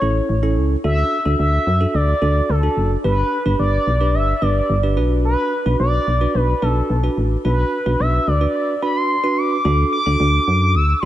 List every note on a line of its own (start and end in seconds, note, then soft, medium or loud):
0.00 0.21 A1 medium
0.00 0.34 C#4 medium
0.00 0.34 E4 medium
0.00 0.34 A4 medium
0.00 0.53 C#5 medium
0.29 0.58 A1 loud
0.43 0.75 C#4 medium
0.43 0.75 E4 medium
0.43 0.75 A4 medium
0.57 0.76 C#2 medium
0.84 1.04 D2 loud
0.84 1.17 D4 medium
0.84 1.17 F#4 medium
0.84 1.17 A4 medium
0.84 1.35 E5 loud
1.25 1.35 D2 loud
1.25 1.69 D4 medium
1.25 1.68 F#4 medium
1.25 1.69 A4 medium
1.39 1.59 D2 medium
1.39 1.96 E5 loud
1.67 1.86 F#2 medium
1.81 2.13 D4 medium
1.81 2.13 F#4 medium
1.81 2.13 A4 medium
1.94 2.14 D2 loud
1.94 2.51 D5 loud
2.22 2.41 D2 loud
2.22 2.54 D4 medium
2.22 2.54 F#4 medium
2.22 2.54 A4 medium
2.49 2.69 D2 loud
2.49 2.91 A4 medium
2.63 2.95 D4 medium
2.63 2.95 F#4 medium
2.63 2.95 A4 medium
2.77 2.96 F#1 medium
3.04 3.24 G1 loud
3.04 3.37 D4 medium
3.04 3.37 G4 medium
3.04 3.37 B4 medium
3.04 3.56 B4 loud
3.46 3.55 G1 loud
3.46 3.89 D4 medium
3.46 3.89 G4 medium
3.46 3.89 B4 medium
3.59 3.79 G1 loud
3.59 4.16 D5 loud
3.87 4.16 B1 medium
4.01 4.33 D4 medium
4.01 4.33 G4 medium
4.01 4.33 B4 medium
4.15 4.34 G1 loud
4.15 4.44 E5 loud
4.42 4.61 G1 loud
4.42 4.74 D4 medium
4.42 4.74 G4 medium
4.42 4.74 B4 medium
4.42 4.97 D5 medium
4.70 4.99 G1 loud
4.83 4.96 D4 medium
4.83 4.97 G4 medium
4.83 4.96 B4 medium
4.97 5.36 B1 loud
4.97 5.52 D4 medium
4.97 5.52 F#4 medium
4.97 5.52 B4 medium
5.25 5.76 B4 loud
5.66 5.76 B1 loud
5.66 6.09 D4 medium
5.66 6.09 F#4 medium
5.66 6.09 B4 medium
5.80 5.99 B1 loud
5.80 6.36 D5 loud
6.07 6.27 B1 medium
6.21 6.53 D4 medium
6.21 6.53 F#4 medium
6.21 6.53 B4 medium
6.35 6.54 B1 loud
6.35 6.64 B4 medium
6.62 6.82 B1 loud
6.62 6.95 D4 medium
6.62 6.94 F#4 medium
6.62 7.17 A4 medium
6.62 6.95 B4 medium
6.90 7.09 B1 loud
7.03 7.36 D4 medium
7.03 7.36 F#4 medium
7.03 7.36 B4 medium
7.17 7.37 A1 medium
7.45 7.64 B1 loud
7.45 7.77 D4 medium
7.45 7.77 F#4 medium
7.45 7.77 B4 medium
7.45 8.01 B4 loud
7.86 7.96 B1 loud
7.86 8.29 D4 medium
7.86 8.29 F#4 medium
7.86 8.29 B4 medium
8.00 8.19 B1 loud
8.00 8.29 E5 loud
8.27 8.47 D2 medium
8.27 8.82 D5 loud
8.41 8.73 D4 medium
8.41 8.73 F#4 medium
8.41 8.73 B4 medium
8.82 9.15 D4 medium
8.82 9.15 F#4 medium
8.82 9.15 B4 medium
8.82 8.98 B5 medium
8.96 9.39 C6 loud
9.24 9.56 D4 medium
9.24 9.56 F#4 medium
9.24 9.56 B4 loud
9.38 9.92 D6 loud
9.65 9.84 D2 loud
9.65 9.97 D4 medium
9.65 9.97 F#4 medium
9.65 9.97 A4 medium
9.93 10.77 D6 loud
10.06 10.16 D2 loud
10.06 10.82 D4 medium
10.06 10.82 F#4 medium
10.06 10.82 A4 medium
10.20 10.39 D2 loud
10.48 10.77 F#2 medium
10.75 10.94 D2 loud
10.75 11.01 E6 loud
10.99 11.04 C6 medium